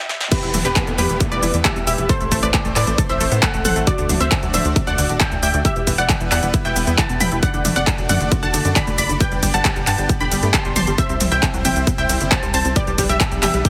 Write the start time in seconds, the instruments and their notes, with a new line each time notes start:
0.09 snare
0.21 snare
0.32 synth arpeggio sound E3, supersaw synth G3 B3 E4 B4, synth pluck G4 B4, grand piano B5, kick, closed hi-hat, crash, downlifter, shaker
0.43 analog synth bass E1, synth arpeggio sound E3, closed hi-hat, shaker
0.54 analog synth bass E1, synth arpeggio sound E3, open hi-hat, mid tom, shaker
0.65 analog synth bass E1, synth arpeggio sound D3, synth pluck G4 B4, grand piano B5, closed hi-hat, shaker
0.76 synth arpeggio sound E3, kick, clap, closed hi-hat, shaker
0.87 analog synth bass E1, synth arpeggio sound A3, closed hi-hat, shaker
0.98 analog synth bass E2, synth arpeggio sound E3, synth pluck G4 B4, grand piano B5, open hi-hat, mid tom, shaker
1.09 analog synth bass E1, synth arpeggio sound E3, closed hi-hat, shaker
1.20 synth arpeggio sound D3, kick, closed hi-hat, shaker
1.32 analog synth bass E1, synth arpeggio sound E3, synth pluck B4 D5, grand piano D6, closed hi-hat, shaker
1.43 analog synth bass E1, synth arpeggio sound E3, open hi-hat, shaker
1.54 analog synth bass E2, synth arpeggio sound E3, closed hi-hat, shaker
1.65 synth arpeggio sound E3, synth pluck G4 E5, grand piano E6, kick, clap, closed hi-hat, shaker
1.76 analog synth bass E1, synth arpeggio sound B2, closed hi-hat, shaker
1.87 analog synth bass E1, synth arpeggio sound E4, synth pluck G4 E5, grand piano E6, open hi-hat, shaker
1.98 analog synth bass E1, synth arpeggio sound E3, closed hi-hat, shaker
2.09 supersaw synth A3 C4 C5, synth arpeggio sound A4, synth pluck A4 C5, grand piano C6, kick, closed hi-hat, shaker
2.20 analog synth bass A1, synth arpeggio sound A3, closed hi-hat, shaker
2.32 analog synth bass A1, synth arpeggio sound A3, kick, open hi-hat, shaker
2.43 analog synth bass A1, synth arpeggio sound A3, synth pluck B4 D5, grand piano D6, closed hi-hat, shaker
2.54 synth arpeggio sound A3, kick, clap, closed hi-hat, shaker
2.65 analog synth bass A1, synth arpeggio sound A3, closed hi-hat, shaker
2.76 analog synth bass A2, synth arpeggio sound A4, synth pluck B4 D5, grand piano D6, clap, open hi-hat, shaker
2.87 analog synth bass A1, synth arpeggio sound A3, closed hi-hat, shaker
2.98 synth arpeggio sound A4, kick, closed hi-hat, shaker
3.09 analog synth bass A1, synth arpeggio sound E3, synth pluck C5 E5, grand piano E6, closed hi-hat, shaker
3.20 analog synth bass A1, synth arpeggio sound A3, open hi-hat, shaker
3.32 analog synth bass A2, synth arpeggio sound B3, closed hi-hat, shaker
3.43 synth arpeggio sound A3, synth pluck A4 F#5, grand piano F#6, kick, clap, closed hi-hat, shaker
3.54 analog synth bass A1, synth arpeggio sound A3, closed hi-hat, shaker
3.65 analog synth bass A1, synth arpeggio sound A4, synth pluck A4 F#5, grand piano F#6, open hi-hat, mid tom, shaker
3.76 analog synth bass A1, synth arpeggio sound A3, closed hi-hat, shaker
3.87 synth arpeggio sound D3, supersaw synth D4 F#4 D5, synth pluck F#4 D5, grand piano D6, kick, closed hi-hat, shaker
3.98 analog synth bass D2, synth arpeggio sound D3, closed hi-hat, shaker
4.09 analog synth bass D2, synth arpeggio sound D3, open hi-hat, mid tom, shaker
4.20 analog synth bass D2, synth arpeggio sound C3, synth pluck C5 E5, grand piano E6, closed hi-hat, shaker
4.32 synth arpeggio sound D3, kick, clap, closed hi-hat, shaker
4.43 analog synth bass D2, synth arpeggio sound F#3, closed hi-hat, shaker
4.54 analog synth bass D1, synth arpeggio sound D3, synth pluck C5 E5, grand piano E6, open hi-hat, mid tom, shaker
4.65 analog synth bass D2, synth arpeggio sound D3, closed hi-hat, shaker
4.76 synth arpeggio sound C3, kick, closed hi-hat, shaker
4.87 analog synth bass D2, synth arpeggio sound D3, synth pluck D5 F#5, grand piano F#6, closed hi-hat, shaker
4.98 analog synth bass D2, synth arpeggio sound D3, open hi-hat, shaker
5.09 analog synth bass D1, synth arpeggio sound D3, closed hi-hat, shaker
5.20 synth arpeggio sound D3, synth pluck E5 G5, grand piano G6, kick, clap, closed hi-hat, shaker
5.32 analog synth bass D2, synth arpeggio sound A2, closed hi-hat, shaker
5.43 analog synth bass D2, synth arpeggio sound D4, synth pluck E5 G5, grand piano G6, open hi-hat, shaker
5.54 analog synth bass D2, synth arpeggio sound D3, closed hi-hat, shaker
5.65 supersaw synth G3 B3 E4 B4, synth arpeggio sound E4, synth pluck G4 E5, grand piano E6, kick, closed hi-hat, shaker
5.76 analog synth bass E1, synth arpeggio sound E3, closed hi-hat, shaker
5.87 analog synth bass E1, synth arpeggio sound E3, kick, open hi-hat, shaker
5.98 analog synth bass E1, synth arpeggio sound E3, synth pluck D5 F#5, grand piano F#6, closed hi-hat, shaker
6.09 synth arpeggio sound E3, kick, clap, closed hi-hat, shaker
6.20 analog synth bass E1, synth arpeggio sound E3, closed hi-hat, shaker
6.32 analog synth bass E2, synth arpeggio sound E4, synth pluck D5 F#5, grand piano F#6, clap, open hi-hat, shaker
6.43 analog synth bass E1, synth arpeggio sound E3, closed hi-hat, shaker
6.54 synth arpeggio sound E4, kick, closed hi-hat, shaker
6.65 analog synth bass E1, synth arpeggio sound B2, synth pluck E5 G5, grand piano G6, closed hi-hat, shaker
6.76 analog synth bass E1, synth arpeggio sound B3, open hi-hat, shaker
6.87 analog synth bass E2, synth arpeggio sound B3, closed hi-hat, shaker
6.98 synth arpeggio sound E3, synth pluck F#5 A5, grand piano A6, kick, clap, closed hi-hat, shaker
7.09 analog synth bass E1, synth arpeggio sound B2, closed hi-hat, shaker
7.20 analog synth bass E1, synth arpeggio sound E4, synth pluck G5 B5, grand piano B6, open hi-hat, mid tom, shaker
7.32 analog synth bass E1, synth arpeggio sound E3, closed hi-hat, shaker
7.43 synth arpeggio sound D3, supersaw synth A3 D4 F#4 D5, synth pluck D5 F#5, grand piano F#6, kick, closed hi-hat, shaker
7.54 analog synth bass F#1, synth arpeggio sound D3, closed hi-hat, shaker
7.65 analog synth bass F#1, synth arpeggio sound D3, open hi-hat, mid tom, ride, shaker
7.76 analog synth bass F#1, synth arpeggio sound C3, synth pluck D5 F#5, grand piano F#6, closed hi-hat, shaker
7.87 synth arpeggio sound D3, kick, clap, closed hi-hat, shaker
7.98 analog synth bass F#1, synth arpeggio sound F#3, closed hi-hat, shaker
8.09 analog synth bass F#2, synth arpeggio sound D3, synth pluck D5 F#5, grand piano F#6, open hi-hat, mid tom, ride, shaker
8.21 analog synth bass F#1, synth arpeggio sound D3, closed hi-hat, shaker
8.32 synth arpeggio sound C3, kick, closed hi-hat, shaker
8.43 analog synth bass F#1, synth arpeggio sound D3, synth pluck F#5 A5, grand piano A6, closed hi-hat, shaker
8.54 analog synth bass F#1, synth arpeggio sound D3, open hi-hat, ride, shaker
8.65 analog synth bass F#2, synth arpeggio sound D3, closed hi-hat, shaker
8.76 synth arpeggio sound D3, synth pluck D5 B5, grand piano B6, kick, clap, closed hi-hat, shaker
8.87 analog synth bass F#1, synth arpeggio sound A2, closed hi-hat, shaker
8.98 analog synth bass F#1, synth arpeggio sound D4, synth pluck D5 B5, grand piano B6, open hi-hat, ride, shaker
9.09 analog synth bass F#1, synth arpeggio sound D3, closed hi-hat, shaker
9.20 supersaw synth B3 G4, synth arpeggio sound G4, synth pluck B4 G5, grand piano G6, kick, closed hi-hat, shaker
9.32 analog synth bass G1, synth arpeggio sound G3, closed hi-hat, shaker
9.43 analog synth bass G1, synth arpeggio sound G3, kick, open hi-hat, ride, shaker
9.54 analog synth bass G1, synth arpeggio sound G3, synth pluck F#5 A5, grand piano A6, closed hi-hat, shaker
9.65 synth arpeggio sound G3, kick, clap, closed hi-hat, shaker
9.76 analog synth bass G1, synth arpeggio sound G3, closed hi-hat, shaker
9.87 analog synth bass G2, synth arpeggio sound G4, synth pluck F#5 A5, grand piano A6, clap, open hi-hat, ride, shaker
9.98 analog synth bass G1, synth arpeggio sound G3, closed hi-hat, shaker
10.09 synth arpeggio sound G4, kick, closed hi-hat, shaker
10.20 analog synth bass G1, synth arpeggio sound D3, synth pluck G5 B5, grand piano B6, closed hi-hat, shaker
10.32 analog synth bass G1, synth arpeggio sound G3, open hi-hat, ride, shaker
10.43 analog synth bass G2, synth arpeggio sound A3, closed hi-hat, shaker
10.54 synth arpeggio sound G3, synth pluck A5 C6, grand piano C7, kick, clap, closed hi-hat, shaker
10.65 analog synth bass G1, synth arpeggio sound G3, closed hi-hat, shaker
10.76 analog synth bass G1, synth arpeggio sound G4, synth pluck A5 C6, grand piano C7, open hi-hat, mid tom, ride, shaker
10.87 analog synth bass G1, synth arpeggio sound G3, closed hi-hat, shaker
10.98 synth arpeggio sound C3, supersaw synth G3 C4 E4 C5, synth pluck C5 E5, grand piano E6, kick, closed hi-hat, shaker
11.09 analog synth bass C2, synth arpeggio sound C3, closed hi-hat, shaker
11.20 analog synth bass C2, synth arpeggio sound C3, open hi-hat, mid tom, ride, shaker
11.32 analog synth bass C2, synth arpeggio sound B2, synth pluck E5 G5, grand piano G6, closed hi-hat, shaker
11.43 synth arpeggio sound C3, kick, clap, closed hi-hat, shaker
11.54 analog synth bass C2, synth arpeggio sound F#3, closed hi-hat, shaker
11.65 analog synth bass G1, synth arpeggio sound C3, synth pluck E5 G5, grand piano G6, open hi-hat, mid tom, ride, shaker
11.76 analog synth bass C2, synth arpeggio sound C3, closed hi-hat, shaker
11.87 synth arpeggio sound B2, kick, closed hi-hat, shaker
11.98 analog synth bass C2, synth arpeggio sound C3, synth pluck E5 G5, grand piano G6, closed hi-hat, shaker
12.09 analog synth bass C2, synth arpeggio sound C3, open hi-hat, ride, shaker
12.21 analog synth bass G1, synth arpeggio sound C3, closed hi-hat, shaker
12.32 synth arpeggio sound C3, synth pluck C5 A5, grand piano A6, kick, clap, closed hi-hat, shaker
12.43 analog synth bass C2, synth arpeggio sound G2, closed hi-hat, shaker
12.54 analog synth bass C2, synth arpeggio sound C4, synth pluck C5 A5, grand piano A6, open hi-hat, ride, shaker
12.65 analog synth bass C2, synth arpeggio sound C3, closed hi-hat, shaker
12.76 supersaw synth B3 D4 B4, synth arpeggio sound G4, synth pluck B4 D5, grand piano D6, kick, closed hi-hat, shaker
12.87 analog synth bass B1, synth arpeggio sound G3, closed hi-hat, shaker
12.98 analog synth bass B1, synth arpeggio sound G3, kick, open hi-hat, ride, shaker
13.09 analog synth bass B1, synth arpeggio sound G3, synth pluck G4 E5, grand piano E6, closed hi-hat, shaker
13.20 synth arpeggio sound G3, kick, clap, closed hi-hat, shaker
13.32 analog synth bass B1, synth arpeggio sound G3, closed hi-hat, shaker
13.43 analog synth bass F#1, synth pluck G4 E5, synth arpeggio sound G4, grand piano E6, clap, open hi-hat, mid tom, ride, shaker
13.54 analog synth bass B1, synth arpeggio sound G3, closed hi-hat, shaker
13.65 synth arpeggio sound G4, kick, closed hi-hat, shaker